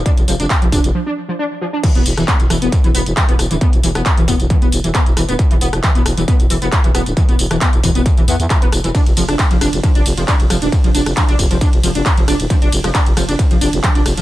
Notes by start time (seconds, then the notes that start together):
0.06 D4, kick, closed hi-hat, tambourine
0.17 F1, closed hi-hat, tambourine
0.28 F1 F3, open hi-hat, tambourine
0.40 F1 D4, closed hi-hat, tambourine
0.50 kick, clap, closed hi-hat, tambourine
0.62 F1 F3, closed hi-hat, tambourine
0.72 F1 D4, kick, open hi-hat, tambourine
0.84 F1, closed hi-hat, tambourine
0.95 F3
1.06 D4
1.29 F3
1.39 D4
1.61 F3
1.73 D4
1.84 E3, kick, closed hi-hat, crash, tambourine
1.95 E1 B3, closed hi-hat, tambourine
2.06 E1, open hi-hat, tambourine
2.17 E1 E3, cross-stick, closed hi-hat, tambourine
2.28 B3, kick, clap, closed hi-hat, tambourine
2.40 E1, closed hi-hat, tambourine
2.50 E1 E3, cross-stick, open hi-hat, tambourine
2.62 E1 B3, closed hi-hat, tambourine
2.72 kick, closed hi-hat, tambourine
2.84 E1 E3, closed hi-hat, tambourine
2.95 E1 B3, open hi-hat, tambourine
3.06 E1, closed hi-hat, tambourine
3.17 E3, kick, cross-stick, clap, closed hi-hat, tambourine
3.29 E1 B3, closed hi-hat, tambourine
3.39 E1, cross-stick, open hi-hat, tambourine
3.51 D1 E3, closed hi-hat, tambourine
3.61 B3, kick, closed hi-hat, tambourine
3.73 E1, closed hi-hat, tambourine
3.83 E1 E3, open hi-hat, tambourine
3.95 E1 B3, cross-stick, closed hi-hat, tambourine
4.06 kick, clap, closed hi-hat, tambourine
4.17 E1 E3, closed hi-hat, tambourine
4.28 E1 B3, kick, open hi-hat, tambourine
4.40 E1, closed hi-hat, tambourine
4.50 E3, kick, closed hi-hat, tambourine
4.62 E1 B3, closed hi-hat, tambourine
4.72 E1, open hi-hat, tambourine
4.84 E1 E3, closed hi-hat, tambourine
4.95 B3, kick, cross-stick, clap, closed hi-hat, tambourine
5.06 E1, closed hi-hat, tambourine
5.17 E1 E3, cross-stick, open hi-hat, tambourine
5.29 D1 B3, closed hi-hat, tambourine
5.39 kick, closed hi-hat, tambourine
5.51 E1 E3, closed hi-hat, tambourine
5.61 E1 B3, open hi-hat, tambourine
5.73 E1, cross-stick, closed hi-hat, tambourine
5.83 E3, kick, clap, closed hi-hat, tambourine
5.95 E1 B3, closed hi-hat, tambourine
6.06 E1, cross-stick, open hi-hat, tambourine
6.17 E1 E3, closed hi-hat, tambourine
6.28 B3, kick, closed hi-hat, tambourine
6.40 E1, closed hi-hat, tambourine
6.50 E1 E3, open hi-hat, tambourine
6.62 E1 B3, closed hi-hat, tambourine
6.72 kick, cross-stick, clap, closed hi-hat, tambourine
6.84 E1 E3, closed hi-hat, tambourine
6.95 E1 B3, cross-stick, open hi-hat, tambourine
7.06 D1, closed hi-hat, tambourine
7.17 E3, kick, closed hi-hat, tambourine
7.29 E1 B3, closed hi-hat, tambourine
7.39 E1, open hi-hat, tambourine
7.51 E1 E3, cross-stick, closed hi-hat, tambourine
7.61 B3, kick, clap, closed hi-hat, tambourine
7.73 E1, closed hi-hat, tambourine
7.84 E1 E3, kick, open hi-hat, tambourine
7.95 E1 B3, closed hi-hat, tambourine
8.06 kick, closed hi-hat, tambourine
8.17 E1 E3, closed hi-hat, tambourine
8.28 E2 B3, open hi-hat, tambourine
8.40 E2, closed hi-hat, tambourine
8.50 E3, kick, cross-stick, clap, closed hi-hat, tambourine
8.62 E1 B3, closed hi-hat, tambourine
8.72 E1, cross-stick, open hi-hat, tambourine
8.84 E1 E3, closed hi-hat, tambourine
8.95 D4, kick, closed hi-hat, ride, tambourine
9.06 F1, closed hi-hat, ride, tambourine
9.17 F1 F3, open hi-hat, ride, tambourine
9.29 F1 D4, cross-stick, closed hi-hat, ride, tambourine
9.39 kick, clap, closed hi-hat, ride, tambourine
9.51 F1 F3, closed hi-hat, ride, tambourine
9.61 F1 D4, cross-stick, open hi-hat, ride, tambourine
9.73 F1, closed hi-hat, ride, tambourine
9.84 F3, kick, closed hi-hat, ride, tambourine
9.95 F1 D4, closed hi-hat, ride, tambourine
10.06 F1, open hi-hat, ride, tambourine
10.17 F1 F3, closed hi-hat, ride, tambourine
10.28 D4, kick, cross-stick, clap, closed hi-hat, ride, tambourine
10.40 F1, closed hi-hat, ride, tambourine
10.50 F1 F3, cross-stick, open hi-hat, ride, tambourine
10.62 D#1 D4, closed hi-hat, ride, tambourine
10.72 kick, closed hi-hat, ride, tambourine
10.84 F1 F3, closed hi-hat, ride, tambourine
10.95 F1 D4, open hi-hat, ride, tambourine
11.06 F1, cross-stick, closed hi-hat, ride, tambourine
11.17 F3, kick, clap, closed hi-hat, ride, tambourine
11.29 F1 D4, closed hi-hat, ride, tambourine
11.39 F1, kick, open hi-hat, ride, tambourine
11.51 F1 F3, closed hi-hat, ride, tambourine
11.61 D4, kick, closed hi-hat, ride, tambourine
11.73 F1, closed hi-hat, ride, tambourine
11.83 F1 F3, open hi-hat, ride, tambourine
11.95 F1 D4, closed hi-hat, ride, tambourine
12.06 kick, cross-stick, clap, closed hi-hat, ride, tambourine
12.17 F1 F3, closed hi-hat, ride, tambourine
12.28 F1 D4, cross-stick, open hi-hat, ride, tambourine
12.40 D#1, closed hi-hat, ride, tambourine
12.50 F3, kick, closed hi-hat, ride, tambourine
12.62 F1 D4, closed hi-hat, ride, tambourine
12.72 F1, open hi-hat, ride, tambourine
12.84 F1 F3, cross-stick, closed hi-hat, ride, tambourine
12.95 D4, kick, clap, closed hi-hat, ride, tambourine
13.06 F1, closed hi-hat, ride, tambourine
13.17 F1 F3, cross-stick, open hi-hat, ride, tambourine
13.29 F1 D4, closed hi-hat, ride, tambourine
13.39 kick, closed hi-hat, ride, tambourine
13.51 F1 F3, closed hi-hat, ride, tambourine
13.61 F1 D4, open hi-hat, ride, tambourine
13.73 F1, closed hi-hat, ride, tambourine
13.83 F3, kick, cross-stick, clap, closed hi-hat, ride, tambourine
13.95 F1 D4, closed hi-hat, ride, tambourine
14.06 F1, cross-stick, open hi-hat, ride, tambourine
14.17 D#1 F3, closed hi-hat, ride, tambourine